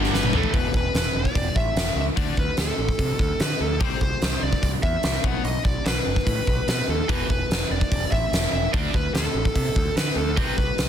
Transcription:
Already playing: picked electric bass G1, overdriven electric guitar G2 D3 G3
0.04 snare
0.14 lead electric guitar B4, snare
0.23 high tom
0.33 picked electric bass A1, overdriven electric guitar A2 E3 A3, lead electric guitar A4, mid tom
0.43 floor tom
0.53 picked electric bass E1, overdriven electric guitar E2 B2 E3, lead electric guitar B4, kick, open hi-hat
0.74 picked electric bass E1, lead electric guitar B4, kick
0.94 picked electric bass E1, lead electric guitar B4, snare, open hi-hat
1.14 picked electric bass E1, lead electric guitar D5
1.25 kick
1.35 picked electric bass E1, kick, open hi-hat
1.56 picked electric bass A1, lead electric guitar E5, kick
1.76 picked electric bass E1, snare, open hi-hat
1.95 picked electric bass C#2, lead electric guitar E5
2.16 picked electric bass D2, overdriven electric guitar D3 A3 D4, lead electric guitar D5, kick, open hi-hat
2.37 picked electric bass D2, lead electric guitar B4, kick
2.57 picked electric bass D2, lead electric guitar A4, snare, open hi-hat
2.78 picked electric bass A1
2.89 kick
2.99 picked electric bass C3, kick, open hi-hat
3.19 picked electric bass D2, kick
3.40 picked electric bass D3, lead electric guitar B4, snare, open hi-hat
3.60 picked electric bass D2, lead electric guitar A4
3.80 picked electric bass C2, overdriven electric guitar C3 G3 C4, lead electric guitar C5, kick, open hi-hat
4.01 picked electric bass C2, lead electric guitar C5, kick
4.22 picked electric bass C2, snare, open hi-hat
4.42 picked electric bass C2, lead electric guitar D5
4.53 kick
4.63 picked electric bass C2, lead electric guitar D5, kick, open hi-hat
4.82 picked electric bass E2, lead electric guitar E5, kick
5.03 picked electric bass C2, snare, open hi-hat
5.24 picked electric bass B1, overdriven electric guitar B2 F#3 B3, lead electric guitar F#5, kick
5.44 picked electric bass B1, lead electric guitar D#5, open hi-hat
5.65 picked electric bass B1, lead electric guitar D5, kick
5.86 picked electric bass B1, lead electric guitar B4, snare, open hi-hat
6.06 picked electric bass F#1
6.16 kick
6.27 picked electric bass A2, kick, open hi-hat
6.47 picked electric bass B1, kick
6.68 picked electric bass B2, lead electric guitar B4, snare, open hi-hat
6.88 picked electric bass D#2, lead electric guitar A4
7.09 picked electric bass E1, overdriven electric guitar E2 B2 E3, lead electric guitar B4, kick, open hi-hat
7.30 picked electric bass E1, lead electric guitar B4, kick
7.50 picked electric bass E1, snare, open hi-hat
7.70 picked electric bass E1, lead electric guitar D5
7.81 kick
7.92 picked electric bass E1, kick, open hi-hat
8.12 picked electric bass A1, lead electric guitar E5, kick
8.32 picked electric bass E1, snare, open hi-hat
8.52 picked electric bass E1, lead electric guitar E5
8.73 picked electric bass D2, overdriven electric guitar D3 A3 D4, lead electric guitar D5, kick, open hi-hat
8.94 picked electric bass D2, lead electric guitar B4, kick
9.14 picked electric bass D2, lead electric guitar A4, snare, open hi-hat
9.34 picked electric bass A1
9.45 kick
9.56 picked electric bass C3, kick, open hi-hat
9.76 picked electric bass D2, kick
9.96 picked electric bass D3, lead electric guitar B4, snare, open hi-hat
10.16 picked electric bass D2, lead electric guitar A4
10.37 picked electric bass C2, overdriven electric guitar C3 G3 C4, lead electric guitar B4, kick, open hi-hat
10.57 picked electric bass C2, lead electric guitar B4, kick
10.78 picked electric bass C2, snare, open hi-hat

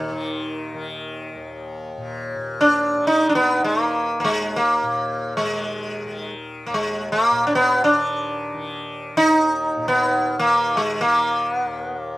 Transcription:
Already playing: tanpura D#2 A#2 D#3, sitar D#3
0.11 tanpura D#3
0.74 tanpura D#3
1.36 tanpura D#2
1.97 tanpura A#2
2.35 tanpura A#2
2.61 sitar D4
2.97 tanpura D#3
3.07 sitar D#4
3.29 sitar D4
3.35 sitar B3
3.59 tanpura D#3
3.64 sitar G#3
3.81 sitar A#3
4.20 tanpura D#2, sitar A#3
4.24 sitar G#3
4.56 sitar A#3
4.83 tanpura A#2
5.37 sitar G#3
5.45 tanpura D#3
6.05 tanpura D#3
6.67 tanpura D#2, sitar A#3
6.74 sitar G#3
7.12 sitar A#3
7.31 tanpura A#2
7.47 sitar D4
7.55 sitar B3
7.84 sitar D4
7.92 tanpura D#3
8.54 tanpura D#3
9.15 tanpura D#2, sitar D#4
9.77 tanpura A#2
9.88 sitar B3
10.39 tanpura D#3, sitar A#3
10.77 sitar G#3
11.01 tanpura D#3, sitar A#3
11.54 sitar B3
11.65 tanpura D#2, sitar A#3
11.84 sitar B3
11.97 sitar A#3

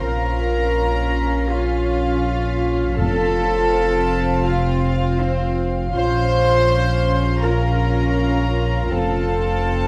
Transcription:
Already playing: violin section F5, ambient pad F5
0.02 double bass section A#1, sub bass A#1, viola section C#4 F4, french horn section C#4 F4, ambient pad F4 C#5, cello section A#4, violin section A#5 F6 B6
0.40 celesta A#4
1.50 cello section F4, violin section F5
2.97 sub bass F1, double bass section F1, timpani F2, french horn section C4, viola section C4, cello section A4, ambient pad C5 F5, violin section F5 A5
3.73 celesta C5
4.46 cello section F4, violin section F5
5.20 cello section C4, violin section C5
5.94 double bass section A#1, sub bass A#1, viola section C#4 F4, french horn section C#4 F4, ambient pad C#4 F4, cello section C5, violin section C6
7.42 french horn section C#4 F4, cello section A#4, violin section A#5
8.90 double bass section F1, sub bass F1, french horn section C4 F4, viola section C4, cello section A4, ambient pad C5 F5, violin section F5 A5

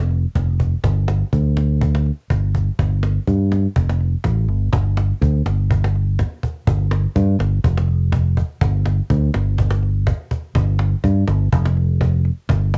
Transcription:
Already playing: fingered electric bass F1
0.11 cajon slap
0.35 fingered electric bass F1, cajon bass, cajon slap
0.60 cajon bass
0.83 fingered electric bass G1, cajon bass, cajon slap
1.08 cajon slap
1.33 fingered electric bass D2, cajon bass
1.57 cajon slap
1.81 cajon bass
1.95 cajon slap
2.06 cajon slap
2.30 fingered electric bass G1, cajon bass, cajon slap
2.55 cajon bass
2.79 fingered electric bass G1, cajon bass, cajon slap
3.03 cajon slap
3.27 fingered electric bass G2, cajon bass
3.52 cajon slap
3.76 fingered electric bass F1, cajon bass
3.90 cajon slap
4.01 cajon slap
4.24 fingered electric bass A1, cajon bass, cajon slap
4.48 fingered electric bass G1, cajon slap
4.73 fingered electric bass G1, cajon bass, cajon slap
4.97 cajon slap
5.21 fingered electric bass D2, cajon bass
5.46 fingered electric bass G1, cajon slap
5.71 cajon bass
5.84 cajon slap
5.95 cajon slap
6.19 cajon bass, cajon slap
6.43 cajon bass
6.67 fingered electric bass G1, cajon bass, cajon slap
6.91 cajon slap
7.16 fingered electric bass G2, cajon bass
7.39 fingered electric bass G1, cajon slap
7.64 fingered electric bass F1, cajon bass
7.78 cajon slap
7.88 cajon slap
8.12 cajon bass, cajon slap
8.37 cajon bass
8.61 fingered electric bass G1, cajon bass, cajon slap
8.85 cajon slap
9.10 fingered electric bass D2, cajon bass
9.34 fingered electric bass G1, cajon slap
9.58 cajon bass
9.70 cajon slap
9.83 cajon slap
10.07 cajon bass, cajon slap
10.31 cajon bass
10.55 fingered electric bass G1, cajon bass, cajon slap
10.79 cajon slap
11.04 fingered electric bass G2, cajon bass
11.27 fingered electric bass G1, cajon slap
11.52 fingered electric bass F1, cajon bass
11.65 cajon slap
11.77 cajon slap
12.01 cajon bass, cajon slap
12.25 cajon slap
12.49 fingered electric bass G1, cajon bass, cajon slap
12.74 cajon slap

